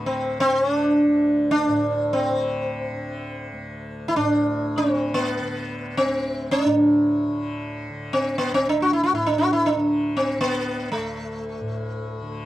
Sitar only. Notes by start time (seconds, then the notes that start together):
0.06 C4
0.40 C4
0.61 C#4
0.74 D4
1.51 D4
2.13 C4
4.08 E4
4.16 D4
4.78 C4
5.14 B3
5.97 C4
6.51 D4
8.13 C4
8.38 B3
8.54 C4
8.69 D4
8.82 F#4
8.93 E4
9.03 F#4
9.15 E4
9.26 D4
9.38 F#4
9.53 E4
9.66 D4
10.17 C4
10.41 B3
10.92 A3